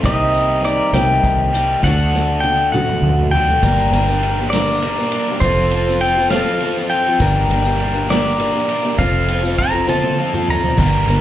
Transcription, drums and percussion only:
0.04 kick loud
0.04 closed hi-hat medium
0.34 closed hi-hat medium
0.64 closed hi-hat medium
0.94 snare loud
0.94 closed hi-hat loud
1.24 kick medium
1.24 closed hi-hat medium
1.54 closed hi-hat medium
1.83 kick loud
1.83 snare medium
2.14 snare medium
2.43 high tom medium
2.74 mid tom medium
2.89 mid tom medium
3.03 mid tom medium
3.18 floor tom medium
3.33 floor tom loud
3.49 floor tom medium
3.63 kick loud
3.63 ride loud
3.63 tambourine medium
3.93 ride medium
3.93 tambourine soft
4.08 tambourine medium
4.23 ride medium
4.53 snare loud
4.53 ride loud
4.53 tambourine medium
4.82 ride medium
4.99 tambourine medium
5.12 ride medium
5.41 kick loud
5.41 ride loud
5.41 tambourine loud
5.71 ride medium
5.71 tambourine soft
5.89 tambourine medium
6.01 ride medium
6.30 snare loud
6.30 ride loud
6.30 tambourine loud
6.60 ride medium
6.76 tambourine medium
6.90 ride medium
7.19 kick loud
7.19 ride loud
7.19 tambourine medium
7.50 ride medium
7.50 tambourine soft
7.65 tambourine medium
7.80 ride medium
8.10 snare loud
8.10 ride medium
8.10 tambourine loud
8.40 ride medium
8.55 tambourine medium
8.69 ride medium
8.98 kick loud
8.98 ride medium
8.98 tambourine loud
9.15 tambourine soft
9.28 ride medium
9.28 tambourine soft
9.45 tambourine medium
9.58 kick medium
9.58 ride medium
9.58 tambourine soft
9.88 high tom medium
9.88 tambourine loud
10.03 high tom medium
10.03 tambourine soft
10.34 mid tom medium
10.34 tambourine medium
10.48 floor tom medium
10.64 floor tom medium
10.78 kick loud
10.78 crash loud
10.78 tambourine loud
11.08 ride medium
11.08 tambourine soft

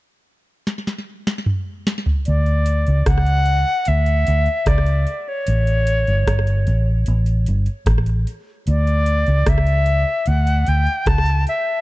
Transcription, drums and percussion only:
0.67 snare soft
0.87 snare soft
1.27 snare medium
1.46 mid tom medium
1.87 snare medium
2.06 floor tom medium
2.25 closed hi-hat medium
2.46 closed hi-hat soft
2.66 closed hi-hat medium
2.87 closed hi-hat soft
3.06 kick medium
3.06 cross-stick loud
3.06 closed hi-hat medium
3.26 closed hi-hat soft
3.46 closed hi-hat medium
3.85 closed hi-hat medium
4.06 closed hi-hat soft
4.27 closed hi-hat medium
4.46 closed hi-hat soft
4.66 kick loud
4.66 cross-stick medium
4.66 closed hi-hat medium
4.86 closed hi-hat soft
5.07 closed hi-hat medium
5.47 closed hi-hat medium
5.67 closed hi-hat soft
5.87 closed hi-hat medium
6.07 closed hi-hat soft
6.27 kick loud
6.27 cross-stick loud
6.27 closed hi-hat medium
6.47 closed hi-hat soft
6.67 closed hi-hat medium
7.06 closed hi-hat medium
7.26 closed hi-hat medium
7.46 closed hi-hat medium
7.66 closed hi-hat soft
7.86 kick loud
7.86 cross-stick loud
7.86 closed hi-hat medium
8.06 closed hi-hat soft
8.27 closed hi-hat medium
8.67 closed hi-hat medium
8.87 closed hi-hat soft
9.06 closed hi-hat medium
9.26 closed hi-hat soft
9.46 kick loud
9.46 cross-stick loud
9.46 closed hi-hat medium
9.67 closed hi-hat soft
9.86 closed hi-hat medium
10.26 closed hi-hat medium
10.47 closed hi-hat medium
10.66 closed hi-hat medium
10.87 closed hi-hat soft
11.06 kick loud
11.06 cross-stick loud
11.06 closed hi-hat medium
11.26 closed hi-hat soft
11.47 closed hi-hat medium

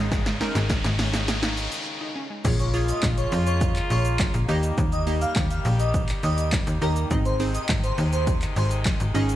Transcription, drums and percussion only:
0.12 kick loud
0.12 snare medium
0.12 closed hi-hat medium
0.12 shaker medium
0.26 snare loud
0.26 closed hi-hat medium
0.26 shaker medium
0.41 snare loud
0.41 open hi-hat medium
0.41 shaker soft
0.55 snare loud
0.55 closed hi-hat medium
0.55 shaker medium
0.70 kick loud
0.70 snare loud
0.70 closed hi-hat medium
0.70 shaker medium
0.84 snare loud
0.84 closed hi-hat medium
0.84 shaker medium
0.99 snare loud
0.99 open hi-hat medium
0.99 shaker medium
1.14 snare loud
1.14 closed hi-hat medium
1.14 shaker medium
1.28 snare loud
1.28 closed hi-hat medium
1.28 shaker medium
1.43 snare loud
1.43 closed hi-hat medium
1.43 shaker medium
1.57 open hi-hat medium
1.57 shaker medium
1.72 closed hi-hat medium
1.72 shaker medium
2.45 kick loud
2.45 closed hi-hat medium
2.45 crash loud
2.45 shaker medium
2.59 closed hi-hat medium
2.59 shaker medium
2.74 open hi-hat medium
2.74 shaker medium
2.89 closed hi-hat medium
2.89 shaker medium
3.03 kick loud
3.03 snare loud
3.03 clap loud
3.03 closed hi-hat medium
3.03 shaker medium
3.18 closed hi-hat medium
3.18 shaker medium
3.32 open hi-hat medium
3.32 shaker medium
3.47 closed hi-hat medium
3.47 shaker medium
3.61 kick loud
3.61 closed hi-hat medium
3.61 shaker medium
3.76 clap medium
3.76 closed hi-hat medium
3.76 shaker medium
3.90 open hi-hat medium
3.90 shaker medium
4.05 closed hi-hat medium
4.05 shaker medium
4.19 kick loud
4.19 snare medium
4.19 clap loud
4.19 closed hi-hat medium
4.19 shaker medium
4.34 closed hi-hat medium
4.34 shaker medium
4.49 open hi-hat medium
4.49 shaker medium
4.63 closed hi-hat medium
4.63 shaker medium
4.78 kick loud
4.78 closed hi-hat medium
4.78 shaker medium
4.92 closed hi-hat medium
4.92 shaker medium
5.07 open hi-hat medium
5.07 shaker medium
5.21 closed hi-hat medium
5.21 shaker medium
5.36 kick loud
5.36 snare medium
5.36 clap loud
5.36 closed hi-hat medium
5.36 shaker medium
5.51 closed hi-hat medium
5.51 shaker medium
5.65 open hi-hat medium
5.65 shaker medium
5.80 closed hi-hat medium
5.80 shaker medium
5.94 kick loud
5.94 closed hi-hat medium
5.94 shaker medium
6.09 clap medium
6.09 closed hi-hat medium
6.09 shaker medium
6.23 open hi-hat medium
6.23 shaker medium
6.38 closed hi-hat medium
6.38 shaker medium
6.52 kick loud
6.52 snare loud
6.52 clap loud
6.52 closed hi-hat medium
6.52 shaker medium
6.67 closed hi-hat medium
6.67 shaker medium
6.82 open hi-hat medium
6.82 shaker medium
6.96 closed hi-hat medium
6.96 shaker medium
7.11 kick loud
7.11 closed hi-hat medium
7.11 shaker medium
7.25 closed hi-hat medium
7.25 shaker medium
7.40 open hi-hat medium
7.40 shaker medium
7.55 closed hi-hat medium
7.55 shaker medium
7.69 kick loud
7.69 snare medium
7.69 clap loud
7.69 closed hi-hat medium
7.69 shaker medium
7.84 closed hi-hat medium
7.84 shaker medium
7.98 open hi-hat medium
7.98 shaker medium
8.13 closed hi-hat medium
8.13 shaker medium
8.27 kick loud
8.27 closed hi-hat medium
8.27 shaker medium
8.42 clap medium
8.42 closed hi-hat medium
8.42 shaker medium
8.56 open hi-hat medium
8.56 shaker medium
8.71 closed hi-hat medium
8.71 shaker medium
8.85 kick loud
8.85 snare medium
8.85 clap loud
8.85 closed hi-hat medium
8.85 shaker medium
9.00 closed hi-hat medium
9.00 shaker medium
9.15 open hi-hat medium
9.15 shaker medium
9.29 closed hi-hat medium
9.29 shaker medium

